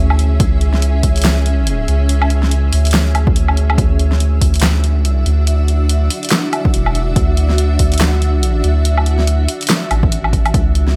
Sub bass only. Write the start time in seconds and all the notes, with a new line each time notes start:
Already playing: D2
0.40 C#2
1.03 C#2
1.88 C#2
2.73 D2
3.78 D2
4.41 D2
5.00 C#2
5.26 D2
6.74 E1
7.16 D2
7.79 D2
8.64 D2
9.91 A1
10.54 C#2